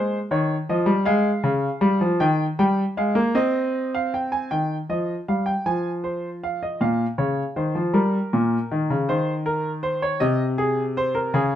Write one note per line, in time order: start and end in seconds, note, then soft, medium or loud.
0.00 0.17 G#3 medium
0.00 0.17 C5 medium
0.31 0.54 D#3 medium
0.31 0.54 C#5 medium
0.69 0.87 F3 medium
0.69 0.93 D#5 medium
0.86 1.05 G3 medium
1.05 1.29 G#3 loud
1.05 2.16 F5 medium
1.44 1.67 C#3 medium
1.81 2.00 G3 medium
2.01 2.19 F3 medium
2.20 2.44 D#3 medium
2.20 2.44 G5 medium
2.59 2.83 G3 medium
2.59 2.83 G5 medium
2.97 3.16 G#3 medium
2.97 3.21 F5 medium
3.15 3.34 A#3 medium
3.35 4.48 C4 medium
3.35 3.92 D#5 medium
3.95 4.13 F5 medium
4.14 4.32 G5 medium
4.32 4.51 G#5 medium
4.51 4.75 D#3 medium
4.51 4.75 G5 medium
4.89 5.14 F3 medium
4.89 5.14 D#5 medium
5.28 5.53 G3 medium
5.28 5.47 F5 medium
5.46 5.66 G5 medium
5.66 6.78 F3 medium
5.66 5.90 G#5 medium
6.04 6.28 C5 medium
6.43 6.62 F5 medium
6.63 6.81 D#5 medium
6.81 7.04 A#2 medium
6.81 7.05 F5 medium
7.18 7.42 C#3 medium
7.18 7.42 C#5 medium
7.56 7.75 D#3 medium
7.56 7.80 C5 medium
7.75 7.94 F3 medium
7.94 8.17 G3 medium
7.94 9.04 A#4 medium
8.33 8.57 A#2 medium
8.71 8.89 D#3 medium
8.90 9.08 C#3 medium
9.09 10.19 D#3 medium
9.09 9.32 C5 medium
9.46 9.69 A#4 medium
9.83 10.02 C5 medium
10.02 10.21 C#5 medium
10.20 11.32 C3 medium
10.20 10.44 D#5 medium
10.58 10.82 G#4 medium
10.97 11.16 C5 medium
11.15 11.34 A#4 medium
11.34 11.55 C#3 medium
11.34 11.55 G#4 medium